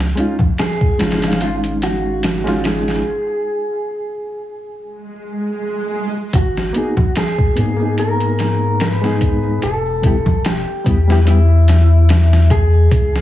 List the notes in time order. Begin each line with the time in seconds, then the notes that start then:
Already playing: C#2
0.00 snare
0.15 G#3 C#4 D#4, closed hi-hat
0.20 F4
0.39 kick, low conga
0.57 G#4, snare, closed hi-hat, shaker
0.81 kick
0.98 G#1 G#3 C#4 D#4, snare, closed hi-hat
1.03 F4
1.11 snare, closed hi-hat
1.19 G#3 C#4, closed hi-hat
1.24 D#4, snare
1.28 F5, closed hi-hat
1.33 snare
1.41 F4, closed hi-hat
1.64 closed hi-hat
1.82 F#4, snare, closed hi-hat
2.22 snare, closed hi-hat, shaker
2.44 G#3 C#4 D#4, snare
2.48 F4
2.64 G#4, snare, closed hi-hat
2.88 snare
4.69 swell
6.33 G#1 F#4, kick, closed hi-hat, shaker
6.56 snare, shaker
6.73 A#3 B3 D#4, closed hi-hat, shaker
6.78 G#4
6.97 kick, low conga, shaker
7.15 G#4, snare, closed hi-hat, shaker
7.38 kick
7.55 G#2 A#3 B3 D#4, closed hi-hat, shaker
7.60 G#4
7.76 A#3 B3, shaker
7.82 D#4 G#4
7.98 A#4, closed hi-hat, shaker
8.20 closed hi-hat
8.38 snare, closed hi-hat, shaker
8.62 shaker
8.80 B4, snare, closed hi-hat, shaker
9.01 G#3 B3 D#4, snare
9.06 G#4
9.21 kick, closed hi-hat, shaker
9.43 shaker
9.61 E1 A4, closed hi-hat, shaker
9.85 shaker
10.02 G3 B3 E4, kick, closed hi-hat, shaker
10.07 G4
10.26 kick, low conga, shaker
10.45 G4, snare, closed hi-hat, shaker
10.85 E2 G3 B3 E4, kick, closed hi-hat, shaker
10.89 G4
11.08 G3 B3 E4, snare, shaker
11.12 G4
11.26 G3 B3 E4, closed hi-hat, shaker
11.30 G4
11.68 snare, closed hi-hat, shaker
11.91 shaker
12.09 snare, closed hi-hat, shaker
12.33 snare
12.49 G#4, kick, closed hi-hat, shaker
12.73 shaker
12.91 C#2, kick, closed hi-hat, shaker
13.15 snare, shaker